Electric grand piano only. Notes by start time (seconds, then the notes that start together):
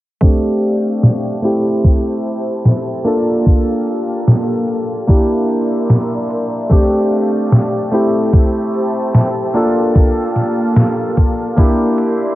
0.21 A3 C4 D4 G4
1.42 A3 C4 E4 G4
3.04 A#3 D4 F4 A4
5.07 A#3 D4 E4 G4
6.69 A3 C4 D4 G4
7.91 A3 C4 E4 G4
9.54 A#3 D4 F4 A4
11.56 A#3 D4 E4 G4